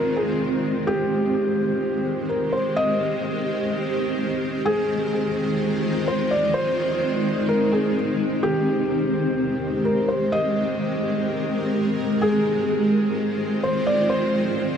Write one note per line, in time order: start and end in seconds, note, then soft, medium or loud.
0.00 0.84 D#3 medium
0.00 0.84 G#3 medium
0.00 0.84 C4 medium
0.00 0.84 F4 medium
0.00 0.15 A#4 medium
0.00 0.84 C5 medium
0.16 0.39 G#4 medium
0.87 12.17 D#3 medium
0.87 4.61 G#3 medium
0.87 12.17 C4 medium
0.87 2.25 G4 loud
0.87 4.61 G4 medium
0.87 10.28 C5 medium
2.29 2.52 A#4 medium
2.53 2.75 C5 medium
2.76 4.61 D#5 loud
4.65 8.39 G#3 medium
4.65 6.52 F4 medium
4.65 6.03 G#4 loud
6.08 6.30 C5 medium
6.31 6.53 D5 medium
6.54 8.41 D#4 medium
6.54 7.45 C5 loud
7.49 7.71 A#4 loud
7.72 7.95 G#4 medium
8.43 14.77 G#3 medium
8.43 9.81 G4 loud
8.43 12.18 G4 medium
9.85 10.07 A#4 medium
10.09 10.31 C5 medium
10.32 12.19 A#4 medium
10.32 12.17 D#5 loud
12.21 14.77 D#3 medium
12.21 14.77 C4 medium
12.21 14.77 F4 medium
12.21 13.59 G#4 loud
12.21 14.77 C5 medium
13.63 13.86 C5 medium
13.87 14.09 D5 medium
14.10 14.77 C5 loud